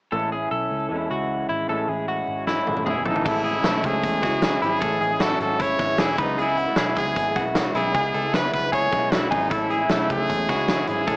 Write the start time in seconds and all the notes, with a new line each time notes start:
0.11 A1 A2 E3 G#3 C#4 E4 A4
0.31 C#4 E4 G#4
0.51 B1 A4
0.71 C#2
0.89 E2 E3 G#3
0.94 C#4 E4
1.10 C#2 F#4
1.49 G#1 E4
1.68 A1 A2 E3 G#3 C#4 E4 A4
1.88 A1 G#3 C#4 E4 G#4
2.08 F#4
2.28 G#1
2.47 E3 G#3 C#4 E4, snare
2.67 G#1, high tom
2.77 high tom
2.86 E1 E4 G#4, mid tom
3.06 A1 A2 E3 G#3 C#4 D#4 E4 A4, floor tom
3.16 floor tom
3.25 A1 A2 E3 G#3 C#4 E4 A4, kick, crash
3.44 G#4, closed hi-hat
3.54 G#3 C#4 E4
3.64 B1 A3, snare, closed hi-hat
3.74 G#3 C#4 E4
3.84 C#2 G#4, kick, closed hi-hat
4.03 E2, kick, closed hi-hat
4.21 C#2 E3 G#3 C#4 E4 F#4, kick, snare, closed hi-hat
4.41 E3 G#3 C#4 E4, snare, closed hi-hat
4.62 G#1 E3 G#3 C#4 E4 G#4, closed hi-hat
4.80 A1 A2 E3 G#3 C#4 E4 A4, kick, closed hi-hat
5.01 A1 G#4, closed hi-hat
5.10 G#3 C#4 E4
5.20 F#4 A4, snare, closed hi-hat
5.29 G#3 C#4 E4
5.40 G#1 A4, closed hi-hat
5.59 E4 C#5, kick, closed hi-hat
5.78 G#1 E3 G#3 C#4 E4, kick, snare, closed hi-hat
5.98 E1 E3 G#3 C#4 E4 G#4, snare, closed hi-hat
6.17 C#2 C#3 G#3 B3 D#4 E4 B4, kick, closed hi-hat
6.37 C#3 G#3 B3 E4 G#4, closed hi-hat
6.57 F#4, closed hi-hat
6.66 G#3 B3 E4
6.76 B1 G#4, snare, closed hi-hat
6.86 G#3 B3 E4
6.96 C#2 G#4, kick, closed hi-hat
7.16 G#1, kick, closed hi-hat
7.35 B1 C#3 G#3 B3 E4 F#4, kick, closed hi-hat
7.54 C#3 G#3 B3 E4, snare, closed hi-hat
7.74 B1 C#3 G#3 B3 E4 G#4, closed hi-hat
7.94 C#2 C#3 G#3 B3 E4 G#4, kick, closed hi-hat
8.14 C#2 A4, closed hi-hat
8.23 G#3 B3 E4
8.33 B4, snare, closed hi-hat
8.42 G#3 B3 E4
8.53 C#2 B4, kick, closed hi-hat
8.72 G#4 C#5, kick, closed hi-hat
8.91 B1 C#3 G#3 B3 E4, kick, closed hi-hat
9.11 B1 C#3 G#3 B3 E4 F#4, snare, closed hi-hat
9.30 G#1 C#3 G#3 B3 D#4 E4 G#4, kick, open hi-hat
9.49 A1 A2 E3 G#3 C#4 E4 A4, kick, closed hi-hat
9.70 G#4, closed hi-hat
9.79 G#3 C#4 E4
9.89 B1 A3, snare, closed hi-hat
9.99 G#3 C#4 E4
10.09 C#2 G#4, kick, closed hi-hat
10.29 E2, kick, closed hi-hat
10.48 C#2 E3 G#3 C#4 E4 F#4, kick, snare, closed hi-hat
10.67 E3 G#3 C#4 E4, snare, closed hi-hat
10.87 G#1 E3 G#3 C#4 E4 G#4, closed hi-hat
11.07 A1 A2 E3 G#3 C#4 E4 A4, kick, closed hi-hat